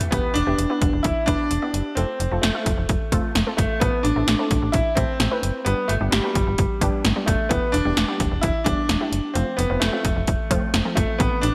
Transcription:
Already playing: analog synth pad E3 G3 B3 G4
0.01 closed hi-hat, floor tom
0.11 fm bass E1, grand piano B3, synth pluck B3 E4 G4 B4, kick, closed hi-hat
0.34 fm bass E1, grand piano D4, closed hi-hat
0.47 fm bass E1, synth pluck B3 E4 G4 B4
0.58 fm bass E1, closed hi-hat
0.70 synth pluck B3 E4 G4 B4
0.82 fm bass E1, kick, closed hi-hat
0.93 fm bass E1
1.03 fm bass E1, grand piano E4, kick, closed hi-hat
1.26 fm bass E1, synth pluck B3 E4 G4 B4, grand piano D4, kick, closed hi-hat
1.51 fm bass E1, closed hi-hat
1.62 synth pluck B3 E4 G4 D5
1.74 fm bass F#1, closed hi-hat
1.95 fm bass F1, synth pluck A3 C4 F4 A4, grand piano C4, closed hi-hat
2.20 fm bass F1, closed hi-hat
2.31 fm bass F1, synth pluck A3 C4 F4 A4
2.42 fm bass F1, grand piano A3, snare, closed hi-hat
2.55 synth pluck A3 C4 F4 A4
2.66 fm bass F1, kick, closed hi-hat
2.78 fm bass F1
2.89 fm bass F1, kick, closed hi-hat
3.12 fm bass F1, synth pluck A3 C4 F4 A4, kick, closed hi-hat
3.35 fm bass F1, snare, closed hi-hat
3.47 synth pluck A3 C4 F4 A4
3.57 fm bass G1, grand piano A3, kick, closed hi-hat
3.80 fm bass A1, synth pluck A3 C4 E4 A4, grand piano B3, kick, closed hi-hat
4.03 fm bass A1, grand piano D4, closed hi-hat
4.16 fm bass A1, synth pluck A3 C4 E4 A4
4.28 fm bass A1, snare, closed hi-hat
4.39 synth pluck A3 C4 E4 A4
4.51 fm bass A1, kick, closed hi-hat
4.62 fm bass A1
4.72 fm bass A1, grand piano E4, kick, closed hi-hat
4.95 fm bass A1, synth pluck A3 C4 E4 A4, grand piano C4, kick, closed hi-hat
5.20 fm bass A1, snare, closed hi-hat
5.31 synth pluck A3 C4 E4 B4
5.43 fm bass F#1, closed hi-hat
5.65 fm bass G1, synth pluck G3 B3 D4 G4, grand piano B3, closed hi-hat
5.88 fm bass G1, grand piano A3, closed hi-hat
6.01 fm bass G1, synth pluck G3 B3 D4 G4
6.11 fm bass G1, grand piano G3, snare, closed hi-hat
6.24 synth pluck G3 B3 D4 F#4
6.35 fm bass G1, kick, closed hi-hat
6.47 fm bass G1
6.58 fm bass G1, kick, closed hi-hat
6.81 fm bass G1, synth pluck G3 B3 D4 G4, kick, closed hi-hat
7.05 fm bass G1, snare, closed hi-hat
7.16 synth pluck G3 B3 D4 G4
7.26 fm bass F#1, grand piano A3, kick, closed hi-hat
7.49 fm bass E1, synth pluck G3 B3 E4 G4, grand piano B3, kick, closed hi-hat
7.72 fm bass E1, grand piano D4, closed hi-hat
7.85 fm bass E1, synth pluck G3 B3 E4 G4
7.97 fm bass E1, snare, closed hi-hat
8.08 synth pluck G3 B3 E4 G4
8.20 fm bass E1, kick, closed hi-hat
8.31 fm bass E1
8.41 fm bass E1, grand piano E4, kick, closed hi-hat
8.64 fm bass E1, synth pluck G3 B3 E4 G4, grand piano D4, kick, closed hi-hat
8.89 fm bass E1, snare, closed hi-hat
9.01 synth pluck G3 B3 E4 G4
9.12 fm bass F#1, closed hi-hat
9.34 fm bass F1, synth pluck F3 A3 C4 F4, grand piano C4, closed hi-hat
9.57 fm bass F1, grand piano B3, closed hi-hat
9.70 fm bass F1, synth pluck F3 A3 C4 F4
9.80 fm bass F1, grand piano A3, snare, closed hi-hat
9.93 synth pluck F3 A3 C4 F4
10.05 fm bass F1, kick, closed hi-hat
10.16 fm bass F1
10.27 fm bass F1, kick, closed hi-hat
10.51 fm bass F1, synth pluck F3 A3 C4 F4, kick, closed hi-hat
10.74 fm bass F1, snare, closed hi-hat
10.85 synth pluck F3 A3 C4 F4
10.95 fm bass G1, grand piano A3, kick, closed hi-hat
11.19 fm bass A1, synth pluck E3 A3 C4 E4, grand piano B3, kick, closed hi-hat
11.41 fm bass A1, grand piano D4, closed hi-hat

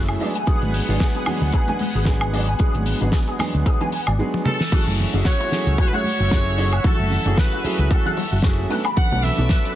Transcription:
Already playing: fingered electric bass F#1, grand piano F#3 A3 C#4 E4 G#4, analog synth pad A3 E4 E5
0.08 closed hi-hat, high woodblock
0.20 grand piano F#3 G#3 B3 D4 G#4, analog synth pad B3 G#4 F#5, clean electric guitar D5, open hi-hat, high conga
0.35 clean electric guitar G#5, closed hi-hat
0.47 grand piano F#3 G#3 B3 D4 G#4, clean electric guitar G#4, muted fingered electric bass stroke, kick, closed hi-hat
0.61 fingered electric bass G#1, closed hi-hat, high conga
0.74 open hi-hat
0.88 fingered electric bass G#1, grand piano F#3 G#3 B3 D4 G#4, clean electric guitar D4
1.00 clean electric guitar G#4, kick, snare, closed hi-hat
1.15 clean electric guitar G#4, closed hi-hat
1.26 grand piano F#3 G#3 B3 D4 G#4, open hi-hat, low conga, high woodblock
1.41 fingered electric bass D2
1.52 clean electric guitar G#4, kick, closed hi-hat
1.67 grand piano F#3 G#3 B3 D4 G#4, clean electric guitar G#5, closed hi-hat, high conga, low conga
1.79 clean electric guitar G#3, open hi-hat, high conga
1.95 fingered electric bass G#1, clean electric guitar G#4
2.05 grand piano F#3 G#3 B3 D4 G#4, clean electric guitar G#4, kick, snare, closed hi-hat
2.21 closed hi-hat, high woodblock
2.33 grand piano F#3 G#3 B3 D4 G#4, clean electric guitar D5, open hi-hat
2.47 clean electric guitar G#5, closed hi-hat
2.59 grand piano F#3 G#3 B3 D4 G#4, clean electric guitar G#4, kick, closed hi-hat
2.74 fingered electric bass G#1, closed hi-hat, high conga
2.86 open hi-hat
3.00 fingered electric bass G#1, grand piano F#3 G#3 B3 D4 G#4, clean electric guitar D4, closed hi-hat
3.12 clean electric guitar G#4, kick, snare, closed hi-hat
3.28 clean electric guitar G#4, closed hi-hat
3.38 grand piano F#3 G#3 B3 D4 G#4, muted fingered electric bass stroke, snare, open hi-hat, low conga, high woodblock
3.54 fingered electric bass D2, closed hi-hat
3.66 clean electric guitar G#4, kick, closed hi-hat
3.80 grand piano F#3 G#3 B3 D4 G#4, clean electric guitar G#5, closed hi-hat, low conga
3.92 clean electric guitar G#5, open hi-hat
4.07 fingered electric bass G#1, clean electric guitar D5, closed hi-hat, high woodblock
4.19 grand piano F#3 G#3 B3 D4 G#4
4.34 high tom
4.45 grand piano F#3 G#3 B3 D4 G#4, trumpet section A4, mid tom
4.60 snare
4.72 grand piano F#3 A3 C#4 E4 G#4, analog synth pad F#4 E5, clean electric guitar F#4, muted fingered electric bass stroke, kick, closed hi-hat, crash, low conga, cabasa
4.87 fingered electric bass F#1, high bongo, high conga, cabasa
4.99 open hi-hat, low conga, cabasa
5.13 fingered electric bass F#1, grand piano F#3 A3 C#4 E4 G#4, clean electric guitar C#4, closed hi-hat, cabasa
5.25 clean electric guitar F#4, trumpet section C#5, kick, snare, closed hi-hat, cabasa
5.40 clean electric guitar F#4, closed hi-hat, high bongo, cabasa
5.51 grand piano F#3 A3 C#4 E4 G#4, snare, open hi-hat, cabasa
5.67 fingered electric bass C#2, closed hi-hat, cabasa
5.78 clean electric guitar F#4, trumpet section C#5, kick, closed hi-hat, high bongo, cabasa
5.86 trumpet section B4
5.92 grand piano F#3 A3 C#4 E4 G#4, trumpet section C#5, clean electric guitar F#5, closed hi-hat, high conga, cabasa
6.04 clean electric guitar F#3, open hi-hat, high conga, cabasa
6.20 fingered electric bass F#1, clean electric guitar F#4, cabasa
6.31 grand piano F#3 A3 C#4 E4 G#4, clean electric guitar F#4, kick, snare, closed hi-hat, high bongo, cabasa
6.47 cabasa
6.58 grand piano F#3 A3 C#4 E4 G#4, clean electric guitar C#5, open hi-hat, cabasa
6.73 clean electric guitar F#5, closed hi-hat, high bongo, cabasa, high woodblock
6.84 grand piano F#3 A3 C#4 E4 A4, clean electric guitar F#4, trumpet section A4, muted fingered electric bass stroke, kick, closed hi-hat, low conga, cabasa
6.99 fingered electric bass F#1, high conga, cabasa
7.11 open hi-hat, low conga, cabasa
7.25 fingered electric bass F#1, grand piano F#3 A3 C#4 E4 G#4, clean electric guitar C#4, closed hi-hat, high bongo, cabasa
7.37 clean electric guitar F#4, trumpet section B4, kick, snare, closed hi-hat, cabasa
7.52 clean electric guitar F#4, closed hi-hat, cabasa
7.64 grand piano F#3 A3 C#4 E4 G#4, muted fingered electric bass stroke, open hi-hat, high bongo, cabasa
7.79 fingered electric bass C#2, closed hi-hat, cabasa
7.91 clean electric guitar F#4, trumpet section A4, kick, closed hi-hat, cabasa
8.05 grand piano F#3 A3 C#4 E4 G#4, clean electric guitar F#5, closed hi-hat, low conga, cabasa
8.17 clean electric guitar F#3, open hi-hat, high bongo, cabasa
8.32 fingered electric bass F#1, clean electric guitar F#4, cabasa
8.42 grand piano F#3 A3 C#4 E4 G#4, clean electric guitar F#4, kick, snare, closed hi-hat, cabasa
8.59 high bongo, cabasa
8.70 grand piano F#3 B3 C#4 D4 A4, analog synth pad A4 B5 D6, clean electric guitar F#5, open hi-hat, high conga, cabasa
8.85 clean electric guitar B5, closed hi-hat, cabasa, high woodblock
8.96 grand piano F#3 B3 C#4 D4 A4, clean electric guitar B4, trumpet section F#5, muted fingered electric bass stroke, kick, closed hi-hat, low conga, cabasa
9.12 fingered electric bass B1, high bongo, high conga, cabasa
9.23 trumpet section E5, open hi-hat, low conga, cabasa
9.38 fingered electric bass B1, grand piano F#3 B3 C#4 D4 A4, clean electric guitar F#4, closed hi-hat, cabasa
9.49 clean electric guitar B4, kick, snare, closed hi-hat, high bongo, cabasa
9.64 clean electric guitar B4, closed hi-hat, cabasa

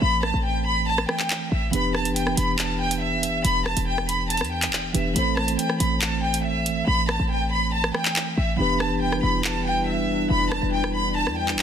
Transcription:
Already playing: tine electric piano E3 A3 C4 A4 C5
0.02 808-style bass A1, violin section B5
0.23 violin section A5, cross-stick
0.34 808-style bass A1
0.45 violin section G5
0.66 violin section B5
0.88 violin section A5
0.98 cross-stick
1.09 violin section G5, cross-stick
1.20 clap
1.30 clap
1.52 808-style bass A1, violin section E5
1.71 808-style bass E1, tine electric piano E3 B3 D4 G4, violin section B5, closed hi-hat
1.76 tine electric piano B4
1.95 violin section A5, cross-stick
2.05 808-style bass F1, closed hi-hat
2.16 violin section G5, closed hi-hat
2.27 cross-stick
2.37 808-style bass E1, violin section B5, closed hi-hat
2.59 violin section A5, clap, closed hi-hat
2.80 violin section G5
2.91 closed hi-hat
3.02 violin section E5
3.12 808-style bass F1
3.23 closed hi-hat
3.29 808-style bass E1
3.45 808-style bass E1, violin section B5, closed hi-hat
3.66 violin section A5, cross-stick
3.77 808-style bass E1, closed hi-hat
3.87 violin section G5
3.98 cross-stick
4.09 violin section B5, closed hi-hat
4.30 violin section A5, closed hi-hat
4.37 808-style bass E2, cross-stick, closed hi-hat
4.45 closed hi-hat
4.52 violin section G5
4.62 clap, closed hi-hat
4.68 808-style bass E1
4.73 clap
4.93 808-style bass E1, tine electric piano E3 B3 D4 G4 B4, violin section E5, closed hi-hat
5.13 808-style bass A1, tine electric piano E3 A3 C4 A4, violin section B5, closed hi-hat
5.18 tine electric piano C5
5.37 violin section A5, cross-stick
5.48 closed hi-hat
5.59 violin section G5, closed hi-hat
5.70 cross-stick
5.80 808-style bass A1, violin section B5, closed hi-hat
6.02 violin section A5, clap, closed hi-hat
6.23 violin section G5
6.34 closed hi-hat
6.44 violin section E5
6.66 closed hi-hat
6.87 808-style bass A1, violin section B5
7.09 violin section A5, cross-stick
7.20 808-style bass A1
7.30 violin section G5
7.52 violin section B5
7.73 violin section A5
7.84 cross-stick
7.95 violin section G5, cross-stick
8.05 clap
8.16 clap
8.37 808-style bass A1, violin section E5
8.57 808-style bass E1, tine electric piano E3 B3 D4 G4, ambient pad G3 D4 E4 B4, violin section B5
8.62 tine electric piano B4
8.80 violin section A5, cross-stick
8.91 808-style bass F1
9.02 violin section G5
9.12 cross-stick
9.23 808-style bass E1, violin section B5
9.44 violin section A5, clap
9.66 violin section G5
9.88 violin section E5
9.98 808-style bass F1
10.14 808-style bass E1
10.30 808-style bass E1, violin section B5
10.52 violin section A5, cross-stick
10.62 808-style bass E1
10.73 violin section G5
10.84 cross-stick
10.95 violin section B5
11.16 violin section A5
11.27 808-style bass E2, cross-stick
11.38 violin section G5
11.48 clap
11.54 808-style bass E1
11.59 clap

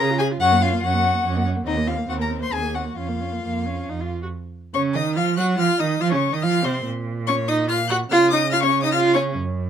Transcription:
0.00 cello C#3, viola G#4, violin A#5
0.10 viola F4
0.19 violin G#4 G#5, viola G#4
0.32 viola F4
0.40 cello F#2, viola C#4, violin F#4 F#5
0.52 viola A#3
0.62 viola C#4, violin F4 F5
0.73 viola A#3
0.83 cello F#2, viola C#4, violin F#4 F#5
0.94 viola A#3
1.04 viola C#4
1.14 viola A#3
1.24 cello F#2, viola C#4
1.36 viola A#3
1.46 viola C#4
1.56 viola A#3
1.66 cello D#2, viola C4, violin D#4 D#5
1.77 viola A#3
1.87 viola C4, violin F4 F5
1.98 viola A#3
2.08 cello D#2, viola C4, violin F#4 F#5
2.19 viola A#3, violin A#4 A#5
2.30 viola C4
2.41 viola A#3, violin C5 C6
2.51 cello D#2, viola C4, violin G#4 G#5
2.62 viola A#3
2.74 viola C4, violin F#4 F#5
2.85 viola A#3
2.97 cello F2, viola C#4, violin F4 F5
3.08 viola A#3
3.20 viola C#4
3.32 viola A#3
3.43 cello F2, viola A#3
3.66 viola C#4
3.88 cello F2, viola D#4
4.01 viola F4
4.23 viola F#4
4.74 cello C#3, viola C#4, violin C#5 C#6
4.94 cello D#3, viola D#4, violin D#5 D#6
5.15 cello F3, viola F4, violin F5 F6
5.37 cello F#3, viola F#4, violin F#5 F#6
5.58 cello F3, viola F4, violin F5 F6
5.80 cello D#3, viola D#4, violin D#5 D#6
6.01 cello F3, viola F4, violin F5 F6
6.12 cello C#3, viola C#4, violin C#5 C#6
6.32 cello D#3, viola D#4, violin D#5 D#6
6.42 cello F3, viola F4, violin F5 F6
6.64 cello C3, viola C4, violin C5 C6
6.85 cello A#2
7.27 viola C#4, violin C#5 C#6
7.48 viola D#4, violin D#5 D#6
7.69 viola F4, violin F5 F6
7.88 viola F#4, violin F#5 F#6
8.10 cello C#3, viola F4, violin F5 F6
8.30 viola D#4, violin D#5 D#6
8.52 viola F4, violin F5 F6
8.63 viola C#4, violin C#5 C#6
8.82 viola D#4, violin D#5 D#6
8.92 viola F4, violin F5 F6
9.13 viola C#4, violin C#5 C#6
9.35 cello F#2

